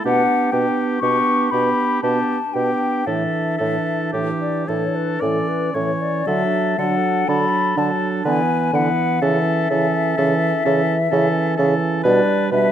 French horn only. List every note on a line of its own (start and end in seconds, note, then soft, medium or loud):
0.05 0.52 B3 soft
0.53 1.00 B3 soft
1.02 1.51 B3 soft
1.51 2.01 B3 soft
2.03 2.39 B3 soft
2.54 3.05 B3 soft
3.07 3.59 E3 soft
3.60 4.13 E3 soft
4.15 4.67 E3 soft
4.68 5.20 E3 soft
5.21 5.73 E3 soft
5.74 6.25 E3 soft
6.26 6.77 F#3 soft
6.78 7.27 F#3 soft
7.28 7.76 F#3 soft
7.77 8.24 F#3 soft
8.26 8.73 E3 soft
8.74 9.21 E3 soft
9.23 9.70 E3 medium
9.71 10.18 E3 soft
10.18 10.53 E3 soft
10.67 11.11 E3 soft
11.12 11.57 E3 soft
11.59 12.04 E3 soft
12.05 12.52 G3 soft
12.53 12.72 G3 soft